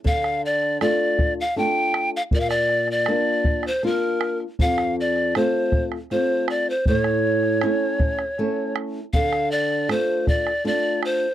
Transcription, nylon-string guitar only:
\new Staff \with { instrumentName = "Nylon-string guitar" } { \time 3/4 \key d \minor \tempo 4 = 79 d4 <a d' f'>4 <a d' f'>4 | bes,4 <bes d' f'>4 <bes d' f'>4 | f,4 <a c' f'>4 <a c' f'>4 | a,4 <a cis' e'>4 <a cis' e'>4 |
d4 <a d' f'>4 <a d' f'>4 | }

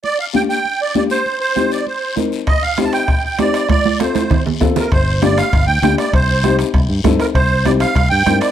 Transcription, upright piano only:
\new Staff \with { instrumentName = "Upright piano" } { \time 4/4 \key g \minor \tempo 4 = 197 r4 <bes d' g'>8 r4. <bes d' g'>8 r8 | r4 <c' ees' g'>8 r4. <c' ees' bes'>8 r8 | r4 <c' ees' g'>8 r4. <c' ees' g'>8 r8 | r4 <c' f' a'>8 r4. <c' f' a'>8 r8 |
r4 <bes d' g'>8 r4. <bes d' g'>8 r8 | r4 <c' ees' g'>8 r4. <c' ees' a'>8 r8 | r4 <c' ees' g'>8 r4. <c' ees' bes'>8 r8 | }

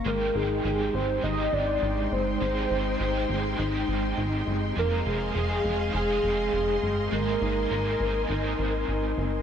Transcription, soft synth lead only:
\new Staff \with { instrumentName = "Soft synth lead" } { \time 4/4 \key aes \major \tempo 4 = 102 bes'8 aes'4 c''8 ees''8 d''4 c''8~ | c''2~ c''8 r4. | bes'8 aes'4. aes'2 | bes'2. r4 | }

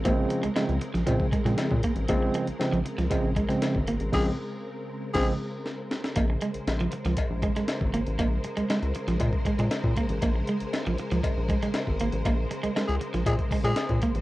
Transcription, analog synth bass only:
\new Staff \with { instrumentName = "Analog synth bass" } { \clef bass \time 4/4 \key bes \minor \tempo 4 = 118 bes,,8 r16 des,16 r16 des,16 r16 bes,,16 bes,16 r16 bes,16 bes,16 r16 bes,16 r16 a,,16 | bes,,8 r16 bes,,16 r16 bes,,16 r16 des,16 bes,,16 bes,,8 r8 aes,,16 aes,,16 a,,16 | bes,,8 r4. bes,,8 r4. | bes,,8 r16 bes,,16 bes,,8 r16 des,16 bes,,16 bes,,8 r8 aes,,16 aes,,16 a,,16 |
bes,,8 r16 des,16 r16 des,16 r16 bes,,16 bes,16 r16 bes,16 bes,16 r16 bes,16 r16 a,,16 | bes,,8 r16 bes,,16 r16 bes,,16 r16 des,16 bes,,16 bes,,8 r8 aes,,16 aes,,16 a,,16 | bes,,8 r16 des,16 r16 des,16 r16 bes,,16 bes,16 r16 bes,16 bes,16 r16 bes,16 r16 a,,16 | }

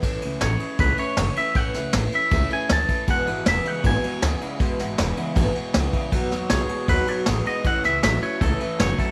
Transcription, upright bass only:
\new Staff \with { instrumentName = "Upright bass" } { \clef bass \time 4/4 \key e \major \tempo 4 = 158 a,,8 cis,8 a,,8 r8 cis,8 r8 fis,,8 r8 | a,,8 cis,8 a,,8 r8 cis,8 r8 d,8 r8 | e,,8 gis,,8 e,,8 r8 gis,,8 r8 d,8 r8 | e,,8 gis,,8 e,,8 r8 gis,,8 r8 cis,8 r8 |
b,,8 dis,8 b,,8 r8 dis,8 r8 a,,8 r8 | a,,8 cis,8 a,,8 r8 cis,8 r8 fis,,8 r8 | }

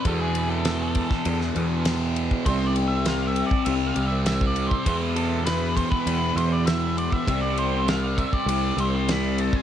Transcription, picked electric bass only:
\new Staff \with { instrumentName = "Picked electric bass" } { \clef bass \time 4/4 \tempo 4 = 100 e,2 e,8 e,4. | c,2 c,8 c,4. | e,2 e,8 e,4. | c,2 c,8 c,4. | }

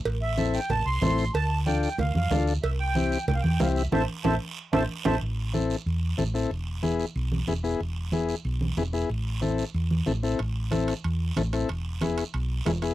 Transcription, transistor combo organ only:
\new Staff \with { instrumentName = "Transistor combo organ" } { \time 4/4 \key a \minor \tempo 4 = 186 r4 <c' e' a'>8 r4. <c' e' a'>8 r8 | r4 <d' f' a'>8 r4. <d' f' a'>8 r8 | r4 <c' e' g'>8 r4. <c' e' g'>8 r8 | <c' e' a'>8 r8 <c' e' a'>8 r4 <c' e' a'>8 r8 <c' e' a'>8 |
r4 <c' e' a'>8 r4. <c' e' a'>8 <c' e' a'>8 | r4 <b e' gis'>8 r4. <b e' gis'>8 <b e' gis'>8 | r4 <b e' gis'>8 r4. <b e' gis'>8 <b e' gis'>8 | r4 <c' e' a'>8 r4. <c' e' a'>8 <c' e' a'>8 |
r4 <c' e' a'>8 r4. <c' e' a'>8 <c' e' a'>8 | r4 <b e' gis'>8 r4. <b e' gis'>8 <b e' gis'>8 | }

